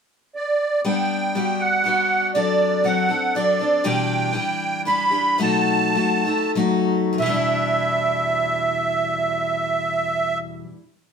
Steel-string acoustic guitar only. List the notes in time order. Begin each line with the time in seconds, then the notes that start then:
0.84 G3 B3 D4
1.35 G3 B3 D4 F#4
1.84 G3 B3 D4 F#4
2.35 F#3 C4 D4 A4
2.84 F#3 C4 D4 A4
3.09 C4 D4 A4
3.35 F#3 C4 D4 A4
3.59 C4 D4 A4
3.84 E2 B2 E3 G3 D4 G4
4.33 E3 G3 D4 G4
4.85 E3 G3 D4 G4
5.10 E3 G3 D4 G4
5.38 B2 F#3 A3 D#4 F#4
5.94 F#3 A3 D#4 F#4
6.25 A3 D#4 F#4
6.55 F#3 A3 D#4 F#4
7.13 E2
7.18 B2 E3
7.26 G3 D4
7.34 E4